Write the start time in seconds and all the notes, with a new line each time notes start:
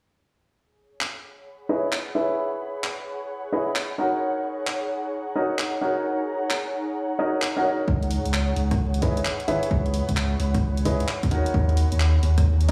0.55 G#4
0.74 C#5
0.96 F#5 B5
1.01 clap
1.69 E4 G#4 B4 C#5 D#5
1.92 clap
2.15 E4 G#4 B4 C#5 E5
2.84 clap
3.52 E4 G#4 B4 C#5 D#5
3.75 clap
3.98 D#4 F#4 A#4 C#5 F#5
4.30 A#5
4.67 clap
5.36 D#4 F#4 A#4 C#5 D#5
5.59 clap
5.81 D#4 F#4 A#4 C#5 F#5
6.50 clap
7.19 D#4 F#4 A#4 C#5 D#5
7.42 clap
7.57 D#4 F#4 A#4 C#5 F#5
7.65 D#4 F#4 A#4 C#5 D#5
7.88 C#2, kick
8.03 closed hi-hat
8.11 open hi-hat
8.25 C#2, closed hi-hat
8.34 clap
8.53 C#2 B5, open hi-hat
8.71 kick, cross-stick, closed hi-hat
8.94 closed hi-hat
9.02 E4 G#4 B4 C#5 D#5, kick, open hi-hat
9.17 closed hi-hat
9.25 clap
9.40 closed hi-hat
9.48 G#1 E4 G#4 B4 C#5 E5, open hi-hat
9.63 closed hi-hat
9.71 C#2, kick
9.86 closed hi-hat
9.94 open hi-hat
10.09 C#2, kick, closed hi-hat
10.17 clap
10.40 C#2, open hi-hat
10.55 kick, cross-stick, closed hi-hat
10.77 closed hi-hat
10.85 E4 G#4 B4 C#5 D#5, kick, open hi-hat
11.00 closed hi-hat
11.08 clap
11.23 kick, closed hi-hat
11.31 D#2 D#4 F#4 A#4 C#5 F#5, open hi-hat
11.46 closed hi-hat
11.54 D#2, kick
11.69 closed hi-hat
11.77 open hi-hat
11.92 D#2, closed hi-hat
11.98 A#5, clap
12.23 D#2, open hi-hat
12.38 kick, cross-stick, closed hi-hat
12.61 closed hi-hat
12.69 D#4 F#4 A#4 C#5 D#5, open hi-hat